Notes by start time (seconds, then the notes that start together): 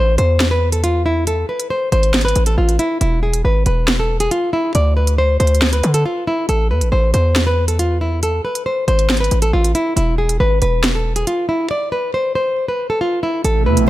Already playing: A1 C5
0.18 E2 C5, closed hi-hat
0.40 snare, closed hi-hat
0.51 B4
0.72 A4, closed hi-hat
0.84 F4, closed hi-hat
1.06 E4
1.27 A4, closed hi-hat
1.49 B4
1.60 closed hi-hat
1.70 C5
1.92 G#1 C5, closed hi-hat
2.03 closed hi-hat
2.14 snare, closed hi-hat
2.21 B4, closed hi-hat
2.28 closed hi-hat
2.35 A1, closed hi-hat
2.46 A4, closed hi-hat
2.58 A1 F4
2.69 closed hi-hat
2.79 E4, closed hi-hat
3.01 E1 E4, closed hi-hat
3.23 G#4
3.33 closed hi-hat
3.45 G#1 B4
3.66 E1 B4, closed hi-hat
3.88 snare, closed hi-hat
4.00 A4
4.20 G#4, closed hi-hat
4.31 F4, closed hi-hat
4.53 E4
4.75 D2 D5, closed hi-hat
4.97 B4
5.07 closed hi-hat
5.18 C5
5.40 D2 C5, closed hi-hat
5.47 closed hi-hat
5.55 closed hi-hat
5.62 snare, closed hi-hat
5.73 B4, closed hi-hat
5.83 D3, closed hi-hat
5.94 A4, closed hi-hat
6.06 F4
6.27 E4
6.49 A1 A4, closed hi-hat
6.71 E2 B4
6.81 A1, closed hi-hat
6.92 A1 C5
7.14 E2 C5, closed hi-hat
7.36 snare, closed hi-hat
7.47 B4
7.68 A4, closed hi-hat
7.79 F4, closed hi-hat
8.01 E4
8.23 A4, closed hi-hat
8.45 B4
8.55 closed hi-hat
8.66 C5
8.88 G#1 C5, closed hi-hat
8.99 closed hi-hat
9.10 snare, closed hi-hat
9.17 B4, closed hi-hat
9.24 closed hi-hat
9.31 A1, closed hi-hat
9.42 A4, closed hi-hat
9.53 A1 F4
9.64 closed hi-hat
9.75 E4, closed hi-hat
9.96 E1 E4, closed hi-hat
10.18 G#4
10.29 closed hi-hat
10.40 G#1 B4
10.62 E1 B4, closed hi-hat
10.84 snare, closed hi-hat
10.95 A4
11.16 G#4, closed hi-hat
11.27 F4, closed hi-hat
11.49 E4
11.71 D5
11.92 B4
12.14 C5
12.35 C5
12.68 B4
12.90 A4
13.01 F4
13.23 E4
13.45 A1 B2 C3 A3 E4 A4, closed hi-hat
13.66 E2 B4
13.77 A1, closed hi-hat